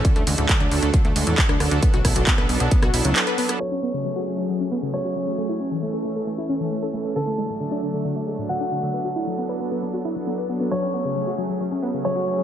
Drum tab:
HH |xxoxxxoxxxoxxxox|xxoxxxoxxxoxxxox|----------------|----------------|
CP |----x-------x---|----x-------x---|----------------|----------------|
SD |-------------rr-|--r--r---r-----r|----------------|----------------|
BD |o---o---o---o---|o-o-o---o-------|----------------|----------------|

HH |----------------|----------------|----------------|
CP |----------------|----------------|----------------|
SD |----------------|----------------|----------------|
BD |----------------|----------------|----------------|